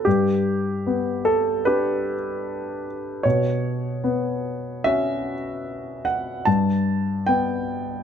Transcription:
0.05 3.21 G2 soft
0.05 1.26 G4 medium
0.86 2.14 B3 soft
1.25 1.66 A4 medium
1.65 3.21 D4 soft
1.65 3.21 G4 soft
1.65 2.84 B4 medium
3.23 6.43 B2 soft
3.23 4.84 C#5 medium
4.04 5.33 B3 soft
4.84 6.43 C#4 soft
4.84 6.43 F#4 soft
4.84 6.06 E5 medium
6.05 6.46 F#5 medium
6.45 8.03 G2 soft
6.45 7.27 A5 medium
7.26 8.03 B3 soft
7.26 8.03 G5 medium

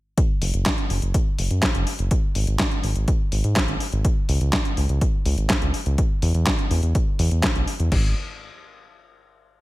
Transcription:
0.18 kick loud
0.18 closed hi-hat medium
0.42 0.52 F#1 medium
0.42 open hi-hat loud
0.54 0.64 F#1 medium
0.54 closed hi-hat medium
0.66 kick loud
0.66 snare loud
0.66 clap loud
0.66 closed hi-hat medium
0.78 closed hi-hat soft
0.90 1.01 F#1 medium
0.90 open hi-hat loud
1.02 1.13 F#1 medium
1.02 closed hi-hat medium
1.14 kick loud
1.14 closed hi-hat medium
1.39 1.49 F#1 medium
1.39 open hi-hat loud
1.51 1.61 F#2 medium
1.51 closed hi-hat medium
1.63 kick loud
1.63 snare loud
1.63 clap loud
1.63 closed hi-hat medium
1.75 1.85 F#1 medium
1.75 closed hi-hat soft
1.87 open hi-hat loud
1.99 2.10 F#1 medium
1.99 closed hi-hat medium
2.11 kick loud
2.11 closed hi-hat medium
2.35 2.46 G#1 loud
2.35 open hi-hat loud
2.47 2.58 G#1 medium
2.47 closed hi-hat medium
2.59 kick loud
2.59 snare loud
2.59 clap loud
2.59 closed hi-hat medium
2.71 closed hi-hat soft
2.84 2.94 G#1 medium
2.84 open hi-hat loud
2.96 3.06 G#1 medium
2.96 closed hi-hat medium
3.08 kick loud
3.08 closed hi-hat medium
3.32 3.43 G#1 medium
3.32 open hi-hat loud
3.44 3.55 G#2 medium
3.44 closed hi-hat medium
3.56 kick loud
3.56 snare loud
3.56 clap loud
3.56 closed hi-hat medium
3.68 3.79 G#1 medium
3.68 closed hi-hat soft
3.80 open hi-hat loud
3.92 4.03 G#1 medium
3.92 closed hi-hat medium
4.05 kick loud
4.05 closed hi-hat medium
4.29 4.39 C#2 loud
4.29 open hi-hat loud
4.41 4.51 C#2 medium
4.41 closed hi-hat medium
4.53 kick loud
4.53 snare loud
4.53 clap loud
4.53 closed hi-hat medium
4.65 closed hi-hat soft
4.77 4.88 C#2 medium
4.77 open hi-hat loud
4.89 5.00 C#2 medium
4.89 closed hi-hat medium
5.01 kick loud
5.01 closed hi-hat medium
5.26 5.36 C#2 medium
5.26 open hi-hat loud
5.38 5.48 G#1 medium
5.38 closed hi-hat medium
5.50 kick loud
5.50 snare loud
5.50 clap loud
5.50 closed hi-hat medium
5.62 5.73 C#2 medium
5.62 closed hi-hat soft
5.74 open hi-hat loud
5.86 5.97 C#2 medium
5.86 closed hi-hat medium
5.98 kick loud
5.98 closed hi-hat medium
6.22 6.33 E2 loud
6.22 open hi-hat loud
6.34 6.45 E2 medium
6.34 closed hi-hat soft
6.47 kick loud
6.47 snare loud
6.47 clap loud
6.47 closed hi-hat medium
6.59 closed hi-hat soft
6.71 6.81 E2 medium
6.71 open hi-hat loud
6.83 6.93 E2 medium
6.83 closed hi-hat medium
6.95 kick loud
6.95 closed hi-hat medium
7.19 7.30 E2 medium
7.19 open hi-hat loud
7.31 7.42 E2 medium
7.31 closed hi-hat medium
7.43 kick loud
7.43 snare loud
7.43 clap loud
7.43 closed hi-hat medium
7.56 7.66 B1 medium
7.56 closed hi-hat soft
7.68 open hi-hat loud
7.80 7.90 E2 medium
7.80 closed hi-hat medium
7.92 8.14 G#1 loud
7.92 kick loud
7.92 crash medium

